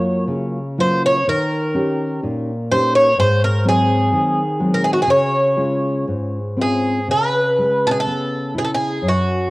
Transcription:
Already playing: nylon-string guitar F#2 F#3 A#3 F4, twelve-string acoustic guitar C#5
0.27 nylon-string guitar C#3
0.78 nylon-string guitar F#3 A#3 F4, twelve-string acoustic guitar C5
1.06 twelve-string acoustic guitar C#5
1.27 nylon-string guitar D#3, twelve-string acoustic guitar A#4
1.75 nylon-string guitar C#4 D#4 G4
2.23 nylon-string guitar A#2
2.71 nylon-string guitar C#4 D#4 G4, twelve-string acoustic guitar C5
2.95 twelve-string acoustic guitar C#5
3.18 nylon-string guitar G#2, twelve-string acoustic guitar C5
3.44 twelve-string acoustic guitar A#4
3.64 nylon-string guitar F#3 G#3 C4
3.69 twelve-string acoustic guitar G#4
4.13 nylon-string guitar D#3
4.60 nylon-string guitar F#3 G#3 C4
4.74 twelve-string acoustic guitar A#4
4.84 twelve-string acoustic guitar G#4
4.93 twelve-string acoustic guitar F#4
5.02 twelve-string acoustic guitar G#4
5.07 nylon-string guitar C#3, twelve-string acoustic guitar C#5
5.57 nylon-string guitar G#3 C#4 F4
6.08 nylon-string guitar G#2
6.57 nylon-string guitar C4 C#4 F4
6.61 twelve-string acoustic guitar G#4
7.08 nylon-string guitar C#3, twelve-string acoustic guitar B4
7.58 nylon-string guitar G#3
7.87 twelve-string acoustic guitar A4
7.91 twelve-string acoustic guitar G#4
8.00 twelve-string acoustic guitar A4
8.06 nylon-string guitar B3
8.54 nylon-string guitar E4, twelve-string acoustic guitar G#4
8.64 twelve-string acoustic guitar A4
8.74 twelve-string acoustic guitar G#4
9.02 nylon-string guitar F#2
9.08 twelve-string acoustic guitar F#4

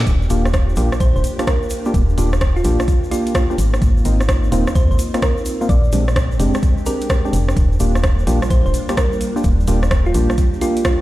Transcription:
Already playing: string machine D4 G4
0.06 fm bass D#1, string machine A#3 F4, kick, closed hi-hat, shaker
0.22 shaker
0.30 fm bass D#1, synth stab A#3 D4 F4 G4, open hi-hat, shaker
0.45 cross-stick, shaker
0.53 kick, cross-stick, closed hi-hat, shaker
0.69 shaker
0.76 fm bass A#1, synth stab A#3 D4 F4 G4, open hi-hat, shaker
0.92 cross-stick, shaker
1.00 fm bass A#1, synth pluck C5, kick, closed hi-hat, shaker
1.16 fm bass D#1, synth pluck C5, shaker
1.24 open hi-hat, shaker
1.39 synth stab A#3 D4 F4 G4, cross-stick, closed hi-hat, shaker
1.47 synth pluck A#4, kick, cross-stick, closed hi-hat, shaker
1.63 shaker
1.70 open hi-hat, shaker
1.85 synth stab A#3 D4 F4 G4, shaker
1.94 fm bass D#1, kick, closed hi-hat, shaker
2.09 shaker
2.18 fm bass D#1, synth stab A#3 D4 F4 G4, open hi-hat, shaker
2.33 cross-stick, shaker
2.41 kick, cross-stick, closed hi-hat, shaker
2.56 synth pluck F4, shaker
2.64 fm bass A#1, synth stab A#3 D4 F4 G4, open hi-hat, shaker
2.80 cross-stick, shaker
2.88 kick, closed hi-hat, shaker
3.04 shaker
3.11 synth stab A#3 D4 F4 G4, synth pluck F4, open hi-hat, shaker
3.27 closed hi-hat, shaker
3.35 synth pluck F4, kick, cross-stick, closed hi-hat, shaker
3.50 synth stab A#3 D4 F4 G4, shaker
3.58 fm bass G#1, string machine C4 D#4, open hi-hat, shaker
3.74 cross-stick, shaker
3.82 fm bass G#1, kick, closed hi-hat, shaker
3.97 shaker
4.05 fm bass G#1, synth stab A#3 C4 D#4 F4, open hi-hat, shaker
4.20 cross-stick, shaker
4.29 kick, cross-stick, closed hi-hat, shaker
4.43 shaker
4.52 fm bass D#1, synth stab A#3 C4 D#4 F4, open hi-hat, shaker
4.67 cross-stick, shaker
4.75 fm bass D#2, synth pluck C5, kick, closed hi-hat, shaker
4.91 fm bass G#1, synth pluck C5, shaker
4.99 open hi-hat, shaker
5.14 synth stab A#3 C4 D#4 F4, cross-stick, closed hi-hat, shaker
5.22 synth pluck A#4, kick, cross-stick, closed hi-hat, shaker
5.37 shaker
5.45 open hi-hat, shaker
5.61 synth stab A#3 C4 D#4 F4, shaker
5.69 fm bass A#1, string machine G#3 D4 G4, synth pluck D5, kick, closed hi-hat, shaker
5.84 shaker
5.92 fm bass A#1, synth stab G#3 C4 D4 G4, open hi-hat, shaker
6.08 cross-stick, shaker
6.16 kick, cross-stick, closed hi-hat, shaker
6.32 shaker
6.39 fm bass F1, synth stab G#3 C4 D4 G4, open hi-hat, shaker
6.54 cross-stick, closed hi-hat, shaker
6.63 kick, closed hi-hat, shaker
6.78 shaker
6.86 synth stab G#3 C4 D4 G4, synth pluck A#4, open hi-hat, shaker
7.01 closed hi-hat, shaker
7.10 kick, cross-stick, closed hi-hat, shaker
7.25 synth stab G#3 C4 D4 G4, shaker
7.33 fm bass F1, open hi-hat, shaker
7.49 cross-stick, shaker
7.57 fm bass D#1, string machine G3 A#3 F4, kick, closed hi-hat, shaker
7.72 shaker
7.80 fm bass D#1, synth stab A#3 D4 F4 G4, open hi-hat, shaker
7.95 cross-stick, shaker
8.03 kick, cross-stick, closed hi-hat, shaker
8.19 shaker
8.27 fm bass A#1, synth stab A#3 D4 F4 G4, open hi-hat, shaker
8.42 cross-stick, shaker
8.50 fm bass A#1, synth pluck C5, kick, closed hi-hat, shaker
8.66 fm bass D#1, synth pluck C5, shaker
8.74 open hi-hat, shaker
8.89 synth stab A#3 D4 F4 G4, cross-stick, closed hi-hat, shaker
8.97 synth pluck A#4, kick, cross-stick, closed hi-hat, shaker
9.13 shaker
9.21 open hi-hat, shaker
9.36 synth stab A#3 D4 F4 G4, shaker
9.44 fm bass D#1, string machine G4, kick, closed hi-hat, shaker
9.60 shaker
9.67 fm bass D#1, synth stab A#3 D4 F4 G4, open hi-hat, shaker
9.83 cross-stick, shaker
9.91 kick, cross-stick, closed hi-hat, shaker
10.06 synth pluck F4, shaker
10.14 fm bass A#1, synth stab A#3 D4 F4 G4, open hi-hat, shaker
10.30 cross-stick, shaker
10.38 kick, closed hi-hat, shaker
10.54 shaker
10.61 synth stab A#3 D4 F4 G4, synth pluck F4, open hi-hat, shaker
10.77 closed hi-hat, shaker
10.84 synth pluck F4, kick, cross-stick, closed hi-hat, shaker

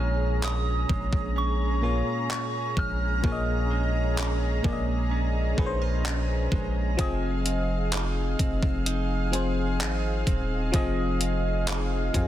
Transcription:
Already playing: 808-style bass A#1, fm electric piano A#2 A#3 G#4 C#5, clean electric guitar A#2 G#3 F4, analog synth pad C#4 G#4 A#5, synth bell F6
0.42 clean electric guitar C#4, synth bell D#6, clap
0.89 808-style bass A#1, clean electric guitar G#3, kick
1.13 808-style bass A#1, kick
1.36 clean electric guitar C#4, synth bell C#6
1.81 fm electric piano A#2 A#3 G#4 C#5, clean electric guitar F4
2.30 clean electric guitar C#4, synth bell C#6, clap
2.77 808-style bass A#1, clean electric guitar G#3, synth bell F6, kick
3.22 808-style bass A#1, fm electric piano A#2 A#3 G#4 C#5, clean electric guitar A#2 F4, kick
3.32 fm electric piano D#5
3.71 clean electric guitar G#3
4.17 clean electric guitar C#4, clap
4.62 808-style bass A#1, fm electric piano A#2 A#3 G#4 D5, clean electric guitar G#3, kick
4.73 fm electric piano D#5
5.11 clean electric guitar C#4
5.56 808-style bass A#1, fm electric piano A#2 A#3 G#4 B4, clean electric guitar D#4, kick
5.66 fm electric piano C5
5.82 clean electric guitar F4
6.05 clean electric guitar C#4, clap
6.52 808-style bass A#1, clean electric guitar G#3, kick
6.97 fm electric piano F3 C4 G#4 D#5, clean electric guitar F3 G#4, analog synth pad G#4 F5, kick, closed hi-hat
7.45 clean electric guitar C4, closed hi-hat
7.92 clean electric guitar D#4, clap, closed hi-hat
8.39 808-style bass F1, clean electric guitar C4, kick, closed hi-hat
8.63 808-style bass F1, kick
8.86 clean electric guitar D#4, closed hi-hat
9.31 fm electric piano F3 C4 G#4 C5, clean electric guitar G#4, closed hi-hat
9.80 808-style bass G#1, clean electric guitar D#4, clap, closed hi-hat
10.27 808-style bass D#1, clean electric guitar C4, kick, closed hi-hat
10.72 808-style bass F1, fm electric piano F3 C4 G#4 D#5, clean electric guitar F3 G#4, kick, closed hi-hat
11.21 clean electric guitar C4, closed hi-hat
11.67 clean electric guitar D#4, clap, closed hi-hat
12.13 808-style bass F2, fm electric piano F3 C4 G4 F5 G#5, clean electric guitar C4, kick, closed hi-hat
12.22 fm electric piano G#4

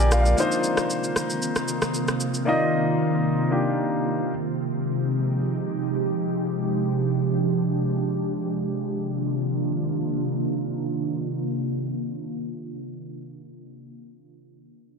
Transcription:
Already playing: sub bass A#1, ambient pad D3 F3 G#3 C4 F4, grand piano G#3 A#3 D4 F4 G4 A4 G#5
0.00 grand piano A#4 D5
0.12 grand piano D5 F5, cross-stick, shaker
0.21 grand piano F5
0.26 grand piano A#4 D5, shaker
0.36 ambient pad C3 D#3 A#3 C4 F4, grand piano A#3 D4 D#4 F4 C5, shaker
0.52 shaker
0.64 shaker
0.77 cross-stick, shaker
0.90 shaker
1.04 shaker
1.16 cross-stick, shaker
1.30 shaker
1.42 shaker
1.56 cross-stick, shaker
1.68 shaker
1.82 cross-stick, shaker
1.94 shaker
2.08 cross-stick, shaker
2.20 shaker
2.34 shaker
2.45 grand piano A#3 D#4 F4 D5 D#5
3.50 grand piano A#3 D4 D#4 F4 G4
4.29 ambient pad F3 G#3 D#4 G4
6.38 ambient pad D4
8.73 ambient pad C3 D#3 A#3 D4 F4

